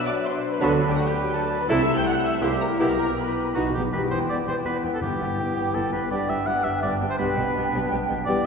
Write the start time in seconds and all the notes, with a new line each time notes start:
Already playing: F#3 D4 B4
0.05 D5 D6
0.24 C5 C6
0.52 B4 B5
0.60 D2 D3 F#3 B3 D4 F#4 A4 B4 A5
0.89 G4 G5
0.95 F#3 D4 F#4 B4 F#5
1.05 G4 G5
1.33 A4 A5
1.59 B4 B5
1.68 C2 C3 A3 E4 A4 E5 E6
1.97 G5 G6
2.05 F#5 F#6
2.24 E5 E6
2.41 C2 C3 A#3 E4 G4 C5 C6
2.60 A#4 A#5
2.79 B1 B2 B3 E4 G4 A#4 A#5
3.17 B3 E4 G4 B4 B5
3.55 B1 B2 B3 D#4 F#4
3.63 B2
3.70 B2
3.75 B2 G4
3.92 E1 E2 E3 B3 E4 G4 B4 G5
4.10 E1 E2 E3 B3 C5 G5
4.28 E1 E2 E3 B3 D5 G5
4.46 E1 E2 E3 B3 C5 G5
4.64 E1 E2 E3 B3 E4 B4 G5
4.83 E1 E2 E3 B3 G5
4.94 A4
5.01 G1 G2 E3 B3 E4 G4 G5
5.19 G1 G2 E3 B3 G5
5.38 G1 G2 E3 B3 G5
5.56 G1 G2 E3 B3 G5
5.74 G1 G2 E3 B3 A4 G5
5.92 G1 G2 E3 B3 B4 G5
6.10 G1 G2 G3 B3 D4 G4 D5 G5
6.28 G1 G2 G3 B3 E5 G5
6.46 G1 G2 G3 B3 F#5 G5
6.64 G1 G2 G3 B3 E5 G5
6.82 G1 G2 G3 B3 D4 D5 G5
7.00 G1 G2 G3 B3 G5
7.10 C5
7.19 B1 B2 G3 B3 D4 G4 B4 G5
7.36 B1 B2 G3 B3 G5
7.54 B1 B2 G3 B3 G5
7.72 B1 B2 G3 B3 G5
7.90 B1 B2 G3 B3 G5
8.08 B1 B2 G3 B3 G5
8.26 E1 E2 G3 B3 E4 G4 D5 G5